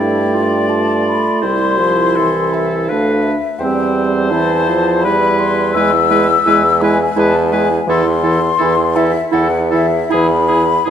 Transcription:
Already playing: G2 A3 E4 D5 G5
0.34 F4
0.69 F4 A5
1.07 B5
1.42 C2 G3 E4 C5 C6
1.79 F3
2.16 E3 A4
2.54 E5
2.89 D2 A3 D4 B4 F5
3.23 E5
3.59 E2 G3 C4 C5 G5
4.30 E3 E4 A5
4.68 F3
5.01 B4 B5
5.06 G3 E4
5.39 C6
5.74 E2 G#3 E4 B4 E6
6.10 G#3 E4 B4
6.46 E2 G#3 E4 B4
6.81 G#3 E4 B4 G#5
7.16 E2 G#3 E4 B4 A5
7.52 G#3 E4 B4 G#5
7.87 E2 E3 E4 A4 C6
8.23 E3 E4 A4
8.58 E2 E3 E4 A4
8.95 E3 E4 A4 E5
9.32 E2 E3 E4 A4 F#5
9.71 E3 E4 A4 E5
10.10 E2 E4 G#4 B5
10.14 E3
10.48 E4 G#4
10.52 E3
10.85 E4 G#4

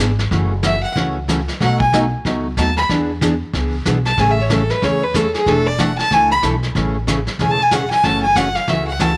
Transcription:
0.00 G#1 E3 B3 D4 G#4
0.19 snare
0.31 F#1 C#3 E3 A3 C#4 F#4, brush sweep, kick, snare
0.63 C#3 E3 A3 C#4 F#4 E5, kick, snare, hi-hat pedal
0.83 F#5
0.96 C#2 C#3 E3 A3 C#4 F#4, brush sweep, kick, snare
1.28 C#3 E3 A3 C#4 F#4, kick, snare, hi-hat pedal
1.48 snare
1.60 B1 B2 F#3 A3 D#4 F#4 F#5, brush sweep, kick, snare
1.80 G#5, kick
1.93 B2 F#3 A3 D#4 F#4, kick, snare, hi-hat pedal
2.25 C#2 B2 F#3 A3 D#4 F#4, brush sweep, kick, snare
2.57 D#2 B2 F#3 A3 D#4 F#4 A5, kick, snare, hi-hat pedal
2.77 B5, snare
2.89 E2 E3 B3 D4 G#4, brush sweep, kick, snare
3.21 E3 B3 D4 G#4, kick, snare, hi-hat pedal
3.53 C#2 E3 B3 D4 G#4, brush sweep, kick, snare
3.85 B1 E3 B3 D4 G#4, kick, snare, hi-hat pedal
4.05 A5, snare
4.17 A1 C#3 E3 A3 C#4 G#4 G#5, brush sweep, kick, snare
4.30 E5
4.42 C#5
4.50 C#3 E3 A3 C#4 G#4 A4, kick, snare, hi-hat pedal
4.70 B4, snare
4.82 E2 C#3 E3 A3 C#4 G#4 C#5, brush sweep, kick, snare
5.03 B4
5.14 C#3 E3 A3 C#4 G#4 A4, kick, snare, hi-hat pedal
5.34 G#4, snare
5.46 E1 E3 A3 D4 E4 A4, brush sweep, kick, snare
5.67 D5
5.79 E3 A3 D4 E4 A4 F#5, kick, snare, hi-hat pedal
5.98 A5, snare
6.11 C#2 E3 A3 D4 E4 A4 G#5, brush sweep, kick, snare
6.31 B5
6.42 B1 E3 A3 D4 E4 A4, kick, snare, hi-hat pedal
6.63 snare
6.75 A1 C#3 E3 A3 C#4 G#4, brush sweep, kick, snare
7.07 C#3 E3 A3 C#4 G#4, kick, snare, hi-hat pedal
7.27 snare
7.39 E1 C#3 E3 A3 C#4 G#4 G#5, brush sweep, kick, snare
7.51 A5
7.62 G#5
7.71 C#3 E3 A3 C#4 G#4 F#5, kick, snare, hi-hat pedal
7.91 G#5, snare
8.04 F#1 C#3 E3 A3 C#4 F#4 A5, brush sweep, kick, snare
8.23 G#5
8.36 C#3 E3 A3 C#4 F#4 F#5, kick, snare, hi-hat pedal
8.55 F5, snare
8.68 C#2 C#3 E3 A3 C#4 F#4 E5, brush sweep, kick, snare
8.88 F#5
8.99 C#3 E3 A3 C#4 F#4 A5, kick, snare, hi-hat pedal

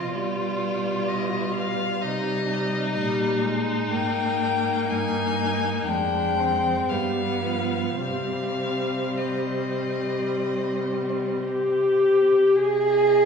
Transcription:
Already playing: C3 F3 F4 D#5
0.13 B2 G3 D5
1.08 D#5
1.55 F5
2.02 C3 G3 D#4 D#5
2.50 D#4
2.94 A#2 G3 D#5
3.42 G#3
3.91 G#2 A#3 G5
4.89 G2 D#4 G#5
5.86 F2 G#3 D4 G5
6.40 C4
6.89 G2 G3 B3 F5
7.44 F3
7.99 C3 G3 C4 F5
9.18 D#5
11.45 G4
12.56 C3 G#4 D#5

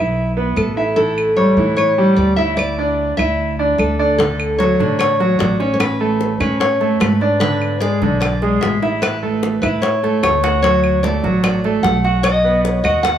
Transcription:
Already playing: B1 E4 B4 E5
0.37 B3 B4
0.56 A1 A4, claves
0.77 E4 E5
0.96 E3 E4 A4
1.18 claves
1.37 G3 G4 C#5
1.57 A2 E3 E4
1.77 C#5, claves
1.98 G3 G4
2.16 D2 D5
2.36 E4 E5
2.57 D5, claves
2.78 D4 D5
3.17 D2 E4 E5, claves
3.59 D4 D5
3.78 D2 A4, claves
3.99 D4 D5
4.18 D3 D4 A4, high bongo
4.40 claves
4.58 F#3 F#4 C#5, high bongo
4.79 A1 D3 D4, high bongo
4.99 C#5, high bongo, claves
5.20 F#3 F#4, high bongo
5.39 A1 D5, high bongo, low bongo
5.60 C#4 C#5, high bongo
5.74 C#5
5.80 B4, high bongo, claves
6.00 A3 A4
6.21 high bongo
6.40 A2 C#4 B4 C#5, high bongo, claves
6.60 C#5, high bongo
6.80 A3 A4, high bongo
7.00 G#2 B4, high bongo, low bongo, claves
7.21 D4 D5, high bongo
7.40 D3 D4 B4, high bongo
7.62 claves
7.80 G#3 G#4 D5, high bongo
8.02 B1 D3 D4, high bongo
8.20 D5, high bongo, claves
8.42 G#3 G#4, high bongo
8.61 A1 E5, high bongo, low bongo
8.82 E4 E5, high bongo
9.02 B4, high bongo, claves
9.23 A3 A4
9.43 high bongo
9.62 A2 E4 B4 E5, high bongo, claves
9.82 C#5, high bongo
10.03 A3 A4, high bongo
10.23 D2 C#5, high bongo, low bongo, claves
10.43 F#4 F#5, high bongo
10.62 F#3 F#4 C#5, high bongo
10.84 claves
11.03 A3 A4 D5, high bongo
11.24 A1 F#3 F#4, high bongo
11.44 D5, high bongo, claves
11.64 A3 A4, high bongo
11.83 B1 F#5, high bongo, low bongo
12.04 F#4 F#5, high bongo
12.23 D#5, high bongo, claves
12.44 B3 B4
12.65 C#5, high bongo
12.84 D#2 F#4 D#5 F#5, high bongo, claves
13.03 F#5, high bongo

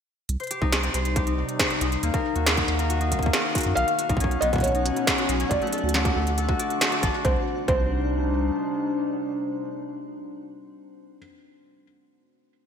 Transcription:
0.29 C2 C3, closed hi-hat
0.40 C5, closed hi-hat
0.44 closed hi-hat
0.47 closed hi-hat
0.51 G4, closed hi-hat
0.60 C2 D#4, kick
0.72 G3, snare, closed hi-hat
0.83 C4, closed hi-hat
0.94 C2 C5, closed hi-hat
1.05 closed hi-hat
1.16 G4, kick, closed hi-hat
1.27 D#4, closed hi-hat
1.38 C4
1.49 closed hi-hat
1.59 C5, kick, snare, closed hi-hat
1.70 G4, closed hi-hat
1.81 C2 D#4, closed hi-hat
1.92 closed hi-hat
2.03 D#2 D#3 A#3, closed hi-hat
2.14 A#3 A#4, kick, closed hi-hat
2.22 F5
2.36 D#2 F#4, closed hi-hat
2.46 D#4, snare, closed hi-hat
2.57 A#3, kick, closed hi-hat
2.68 D#2, closed hi-hat
2.79 F#4 A#4, closed hi-hat
2.90 F#4, closed hi-hat
3.01 D#4, closed hi-hat
3.12 A#1, kick, closed hi-hat
3.19 D#2 A#3, kick, closed hi-hat
3.26 kick
3.33 A#4, snare, closed hi-hat
3.55 F#4, kick, closed hi-hat
3.58 closed hi-hat
3.61 closed hi-hat
3.63 F#2 D#4, closed hi-hat
3.75 B1 B2 B3 F#4 F5, closed hi-hat
3.88 closed hi-hat
3.99 F#3 F#4, closed hi-hat
4.09 B1 D#4, kick, closed hi-hat
4.17 C#4, kick, closed hi-hat
4.24 kick
4.31 C#4, closed hi-hat
4.39 B1 B3 D#4 D#5, closed hi-hat
4.53 F#4, kick, closed hi-hat
4.56 kick
4.58 kick, closed hi-hat
4.61 C#5, kick
4.64 kick, closed hi-hat
4.67 kick, closed hi-hat
4.69 kick
4.72 D#4, kick, closed hi-hat
4.86 C#4, closed hi-hat
4.96 B3, closed hi-hat
5.07 kick, snare, closed hi-hat
5.18 F#4, closed hi-hat
5.29 B1 D#4, closed hi-hat
5.40 C#4, closed hi-hat
5.49 D2 D3 D5, kick, closed hi-hat
5.62 A3, closed hi-hat
5.67 A3, closed hi-hat
5.73 A4, closed hi-hat
5.78 closed hi-hat
5.83 D2
5.89 closed hi-hat
5.94 F#4, snare
6.05 D4, kick, closed hi-hat
6.16 D2 A3
6.20 F#4
6.27 closed hi-hat
6.38 A4, closed hi-hat
6.49 F#4, kick, closed hi-hat
6.59 D5, closed hi-hat
6.70 closed hi-hat
6.81 A3, snare, closed hi-hat
6.92 D5, closed hi-hat
7.03 A1 A5, kick, closed hi-hat
7.14 F#4
7.25 C2 C3 C4 C5, kick, closed hi-hat
7.31 G3
7.38 D4
7.44 D#4
7.68 C2 C4 C5, kick, closed hi-hat

